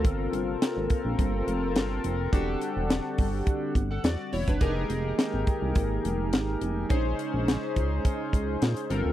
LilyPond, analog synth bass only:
\new Staff \with { instrumentName = "Analog synth bass" } { \clef bass \time 4/4 \key bes \dorian \tempo 4 = 105 g,,8 g,,8 r16 aes,,16 r16 bes,,16 g,,8 f,,8 g,,8 f,,8 | e,,8 r16 e,,8 r16 g,,8 r8 g,,8 e,16 r16 e,,16 fis,,16 | f,,8 f,,8 r16 aes,,16 r16 c,16 aes,,8 f,,8 aes,,8 f,,8 | bes,,8 r16 bes,,8 r16 des,8 r8 des,8 bes,16 r16 g,,16 d,16 | }